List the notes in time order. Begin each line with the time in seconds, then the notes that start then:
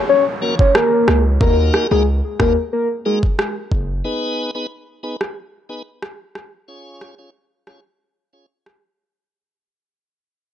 Already playing: downlifter
0.09 C#5
0.42 A#3 C#4 F#4 A#4
0.59 C#5, kick
0.75 A#4, cross-stick
1.08 C#2, cross-stick
1.41 D#2 A#3 D#4 F#4 A#4, kick
1.74 cross-stick
1.91 C#2 A#3 D#4 F#4 G#4 A#4
2.40 D#2 A#3 D#4 F#4 A#4, kick, cross-stick
2.73 A#4
3.05 A#3 D#4 F#4 G#4 A#4
3.23 kick
3.39 cross-stick
3.71 F#1, kick
4.04 B3 D#4 G#4 B4
4.55 B3 D#4 G#4 B4
5.03 B3 D#4 G#4 B4
5.21 cross-stick
5.69 B3 D#4 G#4 B4
6.02 cross-stick
6.35 cross-stick
6.68 C#4 F4 G#4 C#5
7.01 cross-stick
7.18 C#4 F4 G#4 C#5
7.67 C#4 F4 G#4 C#5, cross-stick
8.33 C#4 F4 G#4 C#5
8.66 cross-stick